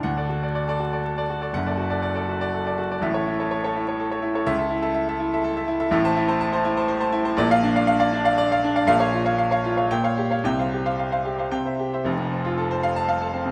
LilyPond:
<<
  \new Staff \with { instrumentName = "Grand piano" } { \time 3/4 \key d \major \tempo 4 = 121 << { fis''8 r2 r8 | fis''8 r2 r8 | e''8 r2 r8 | e''8 r2 r8 |
\key f \major r16 a''16 r2 r8 | r16 f''16 r2 r8 | f''8 r4. g''8 r8 | g''8 r4. g''8 r8 |
r4. r16 a''8 r8. | } \\ { r16 <a' d''>16 fis'16 <a' d''>16 d''16 <a' d''>16 fis'16 <a' d''>16 a'16 <a' d''>16 fis'16 <a' d''>16 | r16 <a' d''>16 fis'16 <a' d''>16 d''16 <a' d''>16 fis'16 <a' d''>16 a'16 <a' d''>16 fis'16 <a' d''>16 | r16 <a' cis''>16 e'16 <a' cis''>16 cis''16 <a' cis''>16 e'16 <a' cis''>16 a'16 <a' cis''>16 e'16 <a' cis''>16 | r16 <a' e''>16 e'16 <a' e''>16 e''16 <a' e''>16 e'16 <a' e''>16 a'16 <a' e''>16 e'16 <a' e''>16 |
e''16 c''16 e'16 <c'' a''>16 a''16 <c'' a''>16 e'16 <c'' a''>16 c''16 <c'' a''>16 e'16 <c'' a''>16 | d''16 d''16 d'16 <d'' f''>16 f''16 <d'' f''>16 d'16 <d'' f''>16 d''16 <d'' f''>16 d'16 <d'' f''>16 | r16 <des'' f''>16 f'16 <des'' f''>16 f''16 <des'' f''>16 f'16 <des'' f''>16 r16 <des'' f''>16 g'16 <des'' f''>16 | r16 <c'' f''>16 g'16 <c'' f''>16 f''16 <c'' f''>16 g'16 <c'' f''>16 r16 <c'' e''>16 g'16 <c'' e''>16 |
r2. | } >> }
  \new Staff \with { instrumentName = "Grand piano" } { \clef bass \time 3/4 \key d \major d,2. | <fis,, fis,>2. | <a,, a,>2. | cis,2. |
\key f \major <a,, a,>2. | <bes,, bes,>2. | <bes,, bes,>2 bes,4 | <c, c>2 c4 |
<f,, f,>16 c16 c'16 f'16 a'16 c''16 f''8 f''16 a'16 c'16 c16 | }
>>